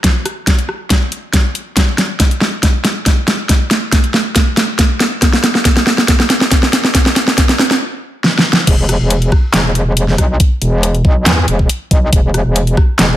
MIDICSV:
0, 0, Header, 1, 3, 480
1, 0, Start_track
1, 0, Tempo, 431655
1, 44, Time_signature, 4, 2, 24, 8
1, 14641, End_track
2, 0, Start_track
2, 0, Title_t, "Wobble bass"
2, 0, Program_c, 0, 39
2, 9644, Note_on_c, 0, 28, 94
2, 9991, Note_off_c, 0, 28, 0
2, 10012, Note_on_c, 0, 28, 100
2, 10346, Note_off_c, 0, 28, 0
2, 10604, Note_on_c, 0, 28, 97
2, 11306, Note_off_c, 0, 28, 0
2, 11324, Note_on_c, 0, 35, 104
2, 11546, Note_off_c, 0, 35, 0
2, 11804, Note_on_c, 0, 28, 96
2, 12266, Note_off_c, 0, 28, 0
2, 12284, Note_on_c, 0, 35, 103
2, 12506, Note_off_c, 0, 35, 0
2, 12524, Note_on_c, 0, 40, 99
2, 12746, Note_off_c, 0, 40, 0
2, 12764, Note_on_c, 0, 28, 100
2, 12986, Note_off_c, 0, 28, 0
2, 13244, Note_on_c, 0, 35, 94
2, 13466, Note_off_c, 0, 35, 0
2, 13484, Note_on_c, 0, 28, 94
2, 13831, Note_off_c, 0, 28, 0
2, 13852, Note_on_c, 0, 28, 104
2, 14186, Note_off_c, 0, 28, 0
2, 14444, Note_on_c, 0, 28, 95
2, 14641, Note_off_c, 0, 28, 0
2, 14641, End_track
3, 0, Start_track
3, 0, Title_t, "Drums"
3, 44, Note_on_c, 9, 36, 96
3, 44, Note_on_c, 9, 38, 67
3, 44, Note_on_c, 9, 42, 74
3, 155, Note_off_c, 9, 36, 0
3, 155, Note_off_c, 9, 38, 0
3, 155, Note_off_c, 9, 42, 0
3, 284, Note_on_c, 9, 37, 60
3, 284, Note_on_c, 9, 42, 50
3, 395, Note_off_c, 9, 37, 0
3, 395, Note_off_c, 9, 42, 0
3, 524, Note_on_c, 9, 36, 100
3, 524, Note_on_c, 9, 38, 65
3, 524, Note_on_c, 9, 42, 71
3, 635, Note_off_c, 9, 36, 0
3, 635, Note_off_c, 9, 38, 0
3, 635, Note_off_c, 9, 42, 0
3, 651, Note_on_c, 9, 42, 35
3, 763, Note_off_c, 9, 42, 0
3, 764, Note_on_c, 9, 37, 61
3, 875, Note_off_c, 9, 37, 0
3, 1004, Note_on_c, 9, 36, 100
3, 1004, Note_on_c, 9, 38, 69
3, 1004, Note_on_c, 9, 42, 74
3, 1115, Note_off_c, 9, 36, 0
3, 1115, Note_off_c, 9, 38, 0
3, 1115, Note_off_c, 9, 42, 0
3, 1244, Note_on_c, 9, 42, 50
3, 1355, Note_off_c, 9, 42, 0
3, 1484, Note_on_c, 9, 36, 98
3, 1484, Note_on_c, 9, 38, 66
3, 1484, Note_on_c, 9, 42, 73
3, 1595, Note_off_c, 9, 36, 0
3, 1595, Note_off_c, 9, 38, 0
3, 1595, Note_off_c, 9, 42, 0
3, 1724, Note_on_c, 9, 42, 47
3, 1835, Note_off_c, 9, 42, 0
3, 1964, Note_on_c, 9, 36, 91
3, 1964, Note_on_c, 9, 38, 74
3, 1964, Note_on_c, 9, 42, 76
3, 2075, Note_off_c, 9, 36, 0
3, 2075, Note_off_c, 9, 38, 0
3, 2075, Note_off_c, 9, 42, 0
3, 2204, Note_on_c, 9, 38, 73
3, 2204, Note_on_c, 9, 42, 49
3, 2315, Note_off_c, 9, 38, 0
3, 2315, Note_off_c, 9, 42, 0
3, 2444, Note_on_c, 9, 36, 100
3, 2444, Note_on_c, 9, 38, 76
3, 2444, Note_on_c, 9, 42, 74
3, 2555, Note_off_c, 9, 36, 0
3, 2555, Note_off_c, 9, 38, 0
3, 2555, Note_off_c, 9, 42, 0
3, 2571, Note_on_c, 9, 42, 36
3, 2682, Note_off_c, 9, 42, 0
3, 2684, Note_on_c, 9, 38, 80
3, 2795, Note_off_c, 9, 38, 0
3, 2924, Note_on_c, 9, 36, 96
3, 2924, Note_on_c, 9, 38, 75
3, 2924, Note_on_c, 9, 42, 75
3, 3035, Note_off_c, 9, 36, 0
3, 3035, Note_off_c, 9, 38, 0
3, 3035, Note_off_c, 9, 42, 0
3, 3164, Note_on_c, 9, 38, 79
3, 3164, Note_on_c, 9, 42, 49
3, 3275, Note_off_c, 9, 38, 0
3, 3275, Note_off_c, 9, 42, 0
3, 3404, Note_on_c, 9, 36, 96
3, 3404, Note_on_c, 9, 38, 80
3, 3404, Note_on_c, 9, 42, 72
3, 3515, Note_off_c, 9, 36, 0
3, 3515, Note_off_c, 9, 38, 0
3, 3515, Note_off_c, 9, 42, 0
3, 3644, Note_on_c, 9, 38, 82
3, 3644, Note_on_c, 9, 42, 51
3, 3755, Note_off_c, 9, 38, 0
3, 3755, Note_off_c, 9, 42, 0
3, 3883, Note_on_c, 9, 38, 81
3, 3883, Note_on_c, 9, 42, 81
3, 3884, Note_on_c, 9, 36, 101
3, 3995, Note_off_c, 9, 36, 0
3, 3995, Note_off_c, 9, 38, 0
3, 3995, Note_off_c, 9, 42, 0
3, 4124, Note_on_c, 9, 38, 85
3, 4124, Note_on_c, 9, 42, 49
3, 4235, Note_off_c, 9, 38, 0
3, 4235, Note_off_c, 9, 42, 0
3, 4364, Note_on_c, 9, 36, 105
3, 4364, Note_on_c, 9, 38, 83
3, 4364, Note_on_c, 9, 42, 78
3, 4475, Note_off_c, 9, 36, 0
3, 4475, Note_off_c, 9, 38, 0
3, 4475, Note_off_c, 9, 42, 0
3, 4491, Note_on_c, 9, 42, 36
3, 4602, Note_off_c, 9, 42, 0
3, 4604, Note_on_c, 9, 38, 87
3, 4715, Note_off_c, 9, 38, 0
3, 4843, Note_on_c, 9, 38, 87
3, 4843, Note_on_c, 9, 42, 83
3, 4844, Note_on_c, 9, 36, 96
3, 4955, Note_off_c, 9, 36, 0
3, 4955, Note_off_c, 9, 38, 0
3, 4955, Note_off_c, 9, 42, 0
3, 5084, Note_on_c, 9, 38, 94
3, 5084, Note_on_c, 9, 42, 53
3, 5195, Note_off_c, 9, 38, 0
3, 5195, Note_off_c, 9, 42, 0
3, 5324, Note_on_c, 9, 36, 98
3, 5324, Note_on_c, 9, 38, 89
3, 5324, Note_on_c, 9, 42, 77
3, 5435, Note_off_c, 9, 36, 0
3, 5435, Note_off_c, 9, 38, 0
3, 5435, Note_off_c, 9, 42, 0
3, 5564, Note_on_c, 9, 38, 90
3, 5564, Note_on_c, 9, 42, 51
3, 5675, Note_off_c, 9, 38, 0
3, 5675, Note_off_c, 9, 42, 0
3, 5804, Note_on_c, 9, 36, 92
3, 5804, Note_on_c, 9, 38, 91
3, 5804, Note_on_c, 9, 42, 82
3, 5915, Note_off_c, 9, 36, 0
3, 5915, Note_off_c, 9, 38, 0
3, 5915, Note_off_c, 9, 42, 0
3, 5931, Note_on_c, 9, 38, 84
3, 6043, Note_off_c, 9, 38, 0
3, 6044, Note_on_c, 9, 38, 95
3, 6044, Note_on_c, 9, 42, 54
3, 6156, Note_off_c, 9, 38, 0
3, 6156, Note_off_c, 9, 42, 0
3, 6171, Note_on_c, 9, 38, 79
3, 6283, Note_off_c, 9, 38, 0
3, 6284, Note_on_c, 9, 36, 101
3, 6284, Note_on_c, 9, 38, 96
3, 6284, Note_on_c, 9, 42, 80
3, 6395, Note_off_c, 9, 36, 0
3, 6395, Note_off_c, 9, 38, 0
3, 6395, Note_off_c, 9, 42, 0
3, 6412, Note_on_c, 9, 38, 88
3, 6412, Note_on_c, 9, 42, 39
3, 6523, Note_off_c, 9, 38, 0
3, 6523, Note_off_c, 9, 42, 0
3, 6524, Note_on_c, 9, 38, 96
3, 6635, Note_off_c, 9, 38, 0
3, 6652, Note_on_c, 9, 38, 90
3, 6763, Note_off_c, 9, 38, 0
3, 6764, Note_on_c, 9, 36, 99
3, 6764, Note_on_c, 9, 38, 99
3, 6764, Note_on_c, 9, 42, 83
3, 6875, Note_off_c, 9, 36, 0
3, 6875, Note_off_c, 9, 38, 0
3, 6875, Note_off_c, 9, 42, 0
3, 6891, Note_on_c, 9, 38, 87
3, 7002, Note_off_c, 9, 38, 0
3, 7004, Note_on_c, 9, 38, 97
3, 7004, Note_on_c, 9, 42, 55
3, 7115, Note_off_c, 9, 38, 0
3, 7115, Note_off_c, 9, 42, 0
3, 7131, Note_on_c, 9, 38, 92
3, 7242, Note_off_c, 9, 38, 0
3, 7244, Note_on_c, 9, 36, 98
3, 7244, Note_on_c, 9, 38, 98
3, 7244, Note_on_c, 9, 42, 80
3, 7355, Note_off_c, 9, 36, 0
3, 7355, Note_off_c, 9, 38, 0
3, 7355, Note_off_c, 9, 42, 0
3, 7371, Note_on_c, 9, 38, 86
3, 7482, Note_off_c, 9, 38, 0
3, 7484, Note_on_c, 9, 38, 100
3, 7484, Note_on_c, 9, 42, 57
3, 7596, Note_off_c, 9, 38, 0
3, 7596, Note_off_c, 9, 42, 0
3, 7612, Note_on_c, 9, 38, 85
3, 7723, Note_off_c, 9, 38, 0
3, 7724, Note_on_c, 9, 36, 99
3, 7724, Note_on_c, 9, 38, 106
3, 7724, Note_on_c, 9, 42, 85
3, 7835, Note_off_c, 9, 36, 0
3, 7835, Note_off_c, 9, 38, 0
3, 7835, Note_off_c, 9, 42, 0
3, 7851, Note_on_c, 9, 38, 92
3, 7962, Note_off_c, 9, 38, 0
3, 7964, Note_on_c, 9, 38, 99
3, 7964, Note_on_c, 9, 42, 57
3, 8075, Note_off_c, 9, 38, 0
3, 8075, Note_off_c, 9, 42, 0
3, 8091, Note_on_c, 9, 38, 89
3, 8202, Note_off_c, 9, 38, 0
3, 8204, Note_on_c, 9, 36, 102
3, 8204, Note_on_c, 9, 38, 103
3, 8204, Note_on_c, 9, 42, 82
3, 8315, Note_off_c, 9, 36, 0
3, 8315, Note_off_c, 9, 38, 0
3, 8315, Note_off_c, 9, 42, 0
3, 8331, Note_on_c, 9, 38, 94
3, 8331, Note_on_c, 9, 42, 40
3, 8442, Note_off_c, 9, 38, 0
3, 8442, Note_off_c, 9, 42, 0
3, 8444, Note_on_c, 9, 38, 103
3, 8555, Note_off_c, 9, 38, 0
3, 8571, Note_on_c, 9, 38, 90
3, 8682, Note_off_c, 9, 38, 0
3, 9164, Note_on_c, 9, 38, 69
3, 9275, Note_off_c, 9, 38, 0
3, 9324, Note_on_c, 9, 38, 83
3, 9435, Note_off_c, 9, 38, 0
3, 9484, Note_on_c, 9, 38, 97
3, 9596, Note_off_c, 9, 38, 0
3, 9644, Note_on_c, 9, 36, 116
3, 9644, Note_on_c, 9, 42, 83
3, 9644, Note_on_c, 9, 49, 104
3, 9755, Note_off_c, 9, 36, 0
3, 9755, Note_off_c, 9, 42, 0
3, 9755, Note_off_c, 9, 49, 0
3, 9884, Note_on_c, 9, 37, 57
3, 9884, Note_on_c, 9, 42, 57
3, 9996, Note_off_c, 9, 37, 0
3, 9996, Note_off_c, 9, 42, 0
3, 10124, Note_on_c, 9, 42, 81
3, 10235, Note_off_c, 9, 42, 0
3, 10251, Note_on_c, 9, 42, 40
3, 10362, Note_off_c, 9, 42, 0
3, 10364, Note_on_c, 9, 36, 102
3, 10364, Note_on_c, 9, 37, 58
3, 10475, Note_off_c, 9, 36, 0
3, 10475, Note_off_c, 9, 37, 0
3, 10604, Note_on_c, 9, 38, 127
3, 10604, Note_on_c, 9, 39, 96
3, 10604, Note_on_c, 9, 42, 83
3, 10715, Note_off_c, 9, 38, 0
3, 10715, Note_off_c, 9, 39, 0
3, 10715, Note_off_c, 9, 42, 0
3, 10844, Note_on_c, 9, 42, 56
3, 10955, Note_off_c, 9, 42, 0
3, 11084, Note_on_c, 9, 42, 81
3, 11195, Note_off_c, 9, 42, 0
3, 11211, Note_on_c, 9, 38, 38
3, 11323, Note_off_c, 9, 38, 0
3, 11324, Note_on_c, 9, 36, 64
3, 11324, Note_on_c, 9, 37, 53
3, 11324, Note_on_c, 9, 42, 59
3, 11435, Note_off_c, 9, 36, 0
3, 11435, Note_off_c, 9, 37, 0
3, 11435, Note_off_c, 9, 42, 0
3, 11564, Note_on_c, 9, 36, 125
3, 11564, Note_on_c, 9, 42, 84
3, 11675, Note_off_c, 9, 42, 0
3, 11676, Note_off_c, 9, 36, 0
3, 11805, Note_on_c, 9, 42, 53
3, 11916, Note_off_c, 9, 42, 0
3, 12044, Note_on_c, 9, 42, 82
3, 12156, Note_off_c, 9, 42, 0
3, 12171, Note_on_c, 9, 42, 40
3, 12282, Note_off_c, 9, 42, 0
3, 12284, Note_on_c, 9, 36, 111
3, 12395, Note_off_c, 9, 36, 0
3, 12524, Note_on_c, 9, 38, 125
3, 12524, Note_on_c, 9, 39, 96
3, 12524, Note_on_c, 9, 42, 79
3, 12635, Note_off_c, 9, 38, 0
3, 12635, Note_off_c, 9, 39, 0
3, 12635, Note_off_c, 9, 42, 0
3, 12764, Note_on_c, 9, 42, 55
3, 12876, Note_off_c, 9, 42, 0
3, 12891, Note_on_c, 9, 36, 67
3, 13002, Note_off_c, 9, 36, 0
3, 13004, Note_on_c, 9, 42, 81
3, 13115, Note_off_c, 9, 42, 0
3, 13244, Note_on_c, 9, 36, 114
3, 13244, Note_on_c, 9, 42, 56
3, 13355, Note_off_c, 9, 36, 0
3, 13356, Note_off_c, 9, 42, 0
3, 13484, Note_on_c, 9, 36, 126
3, 13484, Note_on_c, 9, 42, 83
3, 13595, Note_off_c, 9, 36, 0
3, 13595, Note_off_c, 9, 42, 0
3, 13724, Note_on_c, 9, 37, 63
3, 13724, Note_on_c, 9, 42, 51
3, 13835, Note_off_c, 9, 37, 0
3, 13835, Note_off_c, 9, 42, 0
3, 13964, Note_on_c, 9, 42, 79
3, 14075, Note_off_c, 9, 42, 0
3, 14091, Note_on_c, 9, 42, 38
3, 14203, Note_off_c, 9, 42, 0
3, 14204, Note_on_c, 9, 36, 105
3, 14204, Note_on_c, 9, 37, 61
3, 14315, Note_off_c, 9, 36, 0
3, 14315, Note_off_c, 9, 37, 0
3, 14444, Note_on_c, 9, 38, 120
3, 14444, Note_on_c, 9, 39, 90
3, 14444, Note_on_c, 9, 42, 78
3, 14555, Note_off_c, 9, 38, 0
3, 14555, Note_off_c, 9, 39, 0
3, 14555, Note_off_c, 9, 42, 0
3, 14641, End_track
0, 0, End_of_file